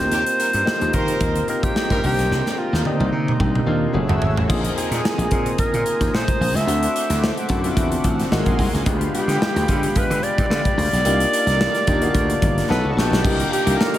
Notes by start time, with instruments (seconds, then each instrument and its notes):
Already playing: grand piano A#3 C4 D#4 F4 G4, alto saxophone C5, analog synth pad C5 G5 A#5
0.12 slap bass D#2, horn section D#3 C4 G4, closed hi-hat
0.26 closed hi-hat
0.39 horn section G3 D#4 A#4, closed hi-hat
0.53 slap bass G2, closed hi-hat
0.65 horn section G3 D#4 C5, grand piano A#3 C4 D#4 F4 G4, snare
0.81 slap bass D#2, closed hi-hat
0.93 slap bass D#3, horn section G3 D#4 C5, alto saxophone A#4, kick, closed hi-hat
1.08 closed hi-hat
1.21 slap bass D#2, grand piano A#3 C4 D#4 F4 G4, kick, closed hi-hat
1.35 closed hi-hat
1.48 grand piano A#3 C4 D#4 F4 G4, alto saxophone A#4, closed hi-hat
1.63 alto saxophone G4, kick, closed hi-hat
1.76 snare
1.90 slap bass G2, horn section G3 D#4 A#4, grand piano A#3 C4 D#4 F4 G4, kick, closed hi-hat
2.03 slap bass C2, grand piano A#3 C4 D4 D#4 G4, alto saxophone G4, open hi-hat
2.19 slap bass B1, snare, closed hi-hat
2.31 slap bass C2, snare
2.46 snare
2.59 alto saxophone F4
2.73 slap bass D#2, snare
2.85 grand piano A#3 C4 D#4 G4 D5, alto saxophone D#4, high tom
3.00 slap bass C2, high tom
3.12 slap bass C3
3.28 mid tom
3.40 slap bass C2, grand piano A#3 C4 D4 D#4 G4, kick, mid tom
3.55 mid tom
3.66 slap bass D#2, grand piano A#3 C4 D4 D#4 F4
3.92 slap bass F#1, grand piano A3 C#4 E4 F#4 G#4, analog synth pad C#5 E5 F#5 E6
4.07 slap bass G1, grand piano A3 C#4 E4 F#4 G#4, floor tom
4.21 slap bass G#1, floor tom
4.36 slap bass A1, floor tom
4.47 slap bass A#1, grand piano A#3 C4 D#4 F4 G#4, analog synth pad C5 G#5 A#5 D#6, kick, crash
4.64 closed hi-hat
4.75 grand piano A#3 C4 D#4 F4 G#4, alto saxophone G#4, closed hi-hat
4.91 slap bass A#2, snare, closed hi-hat
5.05 snare
5.18 slap bass A#1, closed hi-hat
5.31 slap bass A#2, grand piano A#3 C4 D#4 F4 G#4, kick, closed hi-hat
5.46 closed hi-hat
5.58 alto saxophone A#4, muted slap bass stroke, kick, closed hi-hat
5.74 slap bass A#2, closed hi-hat
5.86 closed hi-hat
6.01 slap bass D#2, kick, snare, closed hi-hat
6.13 slap bass A#2, alto saxophone C5, snare
6.28 kick, closed hi-hat
6.41 slap bass A#1, open hi-hat
6.54 slap bass C#2, alto saxophone E5, snare, closed hi-hat
6.66 slap bass D2, grand piano A3 C4 D4 E4 F#4, analog synth pad E5 F#5 D6, closed hi-hat
6.83 closed hi-hat
6.96 closed hi-hat
7.10 slap bass D2, snare, closed hi-hat
7.24 snare
7.38 closed hi-hat
7.48 slap bass F#2, grand piano A3 C4 D4 E4 F#4, kick, closed hi-hat
7.64 grand piano A3 C4 D4 E4 F4, closed hi-hat
7.71 grand piano F#4
7.76 slap bass E2, kick, closed hi-hat
7.92 closed hi-hat
8.04 slap bass A1, kick, closed hi-hat
8.20 snare, closed hi-hat
8.31 slap bass G#1, grand piano G#3 A#3 C4 D#4 F#4, analog synth pad A#4 G#5 C6, snare
8.46 slap bass A#1, kick, closed hi-hat
8.59 slap bass C2, kick, open hi-hat
8.74 slap bass C#2, snare, closed hi-hat
8.86 slap bass D2, grand piano G#3 B3 D4 F4 G4, analog synth pad G#3 F5 G5 B5, kick, closed hi-hat
9.01 closed hi-hat
9.13 grand piano G#3 B3 D4 F4 G4, alto saxophone G4, closed hi-hat
9.28 slap bass D3, snare, closed hi-hat
9.42 snare
9.56 slap bass D2, snare, closed hi-hat
9.68 slap bass D3, grand piano G#3 B3 D4 F4 G4, kick, closed hi-hat
9.83 closed hi-hat
9.96 alto saxophone B4, muted slap bass stroke, kick, closed hi-hat
10.10 slap bass D3, closed hi-hat
10.23 alto saxophone D5, closed hi-hat
10.38 slap bass G2, kick, closed hi-hat
10.50 slap bass D3, snare
10.65 kick, closed hi-hat
10.77 slap bass D2, open hi-hat
10.93 slap bass B1, snare, closed hi-hat
11.05 slap bass C2, grand piano A#3 D4 D#4 F4 G4, analog synth pad A#4 D6, closed hi-hat
11.20 closed hi-hat
11.33 closed hi-hat
11.46 slap bass C2, snare, closed hi-hat
11.61 snare
11.75 snare, closed hi-hat
11.87 slap bass D#2, grand piano A#3 D4 D#4 F4 G4, kick, closed hi-hat
12.01 grand piano A#3 D4 D#4 F4 F#4, closed hi-hat
12.09 grand piano G4
12.14 slap bass D2, kick, closed hi-hat
12.30 closed hi-hat
12.42 slap bass G1, kick, closed hi-hat
12.58 snare, closed hi-hat
12.68 slap bass B1, grand piano B3 C#4 D#4 F#4 A4, alto saxophone B4, analog synth pad B4 A5 C#6, snare
12.84 slap bass C#2
12.92 alto saxophone F#4
12.97 slap bass A#1, alto saxophone G4, snare
13.11 slap bass B1, snare
13.23 slap bass C2, horn section D#3 D4 G4, grand piano A#3 D4 D#4 F4 G4, analog synth pad A#4 F5 A#5 D6, kick, crash
13.40 closed hi-hat
13.53 alto saxophone G4, closed hi-hat
13.65 slap bass C2, grand piano A#3 D4 D#4 F4 G4, closed hi-hat
13.78 alto saxophone A#4, snare
13.93 grand piano A#3 D4 D#4 F4 G4, closed hi-hat